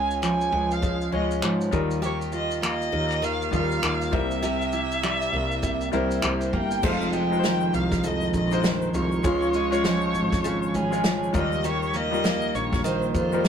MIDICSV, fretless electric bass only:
0, 0, Header, 1, 2, 480
1, 0, Start_track
1, 0, Key_signature, -4, "minor"
1, 0, Tempo, 600601
1, 1620, Time_signature, 4, 2, 24, 8
1, 10773, End_track
2, 0, Start_track
2, 0, Title_t, "Fretless electric bass"
2, 0, Program_c, 0, 35
2, 0, Note_on_c, 0, 37, 101
2, 387, Note_off_c, 0, 37, 0
2, 418, Note_on_c, 0, 37, 95
2, 867, Note_off_c, 0, 37, 0
2, 900, Note_on_c, 0, 37, 79
2, 1121, Note_off_c, 0, 37, 0
2, 1139, Note_on_c, 0, 44, 87
2, 1360, Note_off_c, 0, 44, 0
2, 1383, Note_on_c, 0, 39, 93
2, 2309, Note_off_c, 0, 39, 0
2, 2340, Note_on_c, 0, 39, 90
2, 2788, Note_off_c, 0, 39, 0
2, 2821, Note_on_c, 0, 39, 86
2, 3041, Note_off_c, 0, 39, 0
2, 3061, Note_on_c, 0, 39, 88
2, 3282, Note_off_c, 0, 39, 0
2, 3300, Note_on_c, 0, 36, 97
2, 4229, Note_off_c, 0, 36, 0
2, 4259, Note_on_c, 0, 36, 85
2, 4708, Note_off_c, 0, 36, 0
2, 4742, Note_on_c, 0, 36, 83
2, 4963, Note_off_c, 0, 36, 0
2, 4980, Note_on_c, 0, 36, 85
2, 5202, Note_off_c, 0, 36, 0
2, 5220, Note_on_c, 0, 31, 84
2, 5442, Note_off_c, 0, 31, 0
2, 5461, Note_on_c, 0, 29, 102
2, 6150, Note_off_c, 0, 29, 0
2, 6184, Note_on_c, 0, 36, 87
2, 6632, Note_off_c, 0, 36, 0
2, 6664, Note_on_c, 0, 34, 87
2, 7112, Note_off_c, 0, 34, 0
2, 7147, Note_on_c, 0, 36, 95
2, 7366, Note_off_c, 0, 36, 0
2, 7386, Note_on_c, 0, 37, 101
2, 8105, Note_on_c, 0, 32, 83
2, 8117, Note_off_c, 0, 37, 0
2, 8553, Note_off_c, 0, 32, 0
2, 8588, Note_on_c, 0, 32, 89
2, 9035, Note_off_c, 0, 32, 0
2, 9067, Note_on_c, 0, 39, 97
2, 9994, Note_off_c, 0, 39, 0
2, 10029, Note_on_c, 0, 34, 89
2, 10475, Note_off_c, 0, 34, 0
2, 10505, Note_on_c, 0, 41, 89
2, 10773, Note_off_c, 0, 41, 0
2, 10773, End_track
0, 0, End_of_file